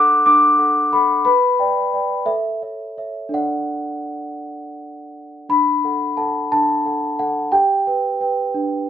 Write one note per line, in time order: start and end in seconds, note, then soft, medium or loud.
0.00 0.26 D4 medium
0.00 0.59 A4 soft
0.00 0.59 F#5 soft
0.00 0.25 D6 medium
0.00 1.29 F#6 loud
0.26 0.59 D4 soft
0.26 0.92 D6 medium
0.59 0.89 A4 soft
0.59 0.89 F#5 soft
0.93 1.23 A4 soft
0.93 1.23 F#5 soft
0.93 1.24 B5 medium
1.25 1.58 B4 medium
1.25 2.27 B5 medium
1.59 1.90 D5 soft
1.59 1.90 G5 soft
1.94 2.25 D5 soft
1.94 2.25 G5 soft
2.26 2.61 A4 soft
2.26 2.62 E5 medium
2.62 2.95 C#5 soft
2.62 2.95 E5 soft
2.97 3.31 C#5 soft
2.97 3.31 E5 soft
3.29 5.42 D4 soft
3.29 5.43 A4 soft
3.29 5.44 D5 soft
3.34 5.13 F#5 medium
5.49 5.83 D4 soft
5.49 6.18 B5 medium
5.84 6.15 A4 soft
5.84 6.15 F#5 soft
6.17 6.48 A4 soft
6.17 6.48 F#5 soft
6.17 6.51 A5 medium
6.52 6.85 D4 soft
6.52 7.19 A5 medium
6.86 7.16 A4 soft
6.86 7.16 F#5 soft
7.19 7.50 A4 soft
7.19 7.53 F#5 medium
7.52 7.86 G4 medium
7.52 7.86 G5 medium
7.87 8.18 B4 soft
7.87 8.18 G5 soft
8.20 8.51 B4 soft
8.20 8.52 G5 soft
8.54 8.88 D4 soft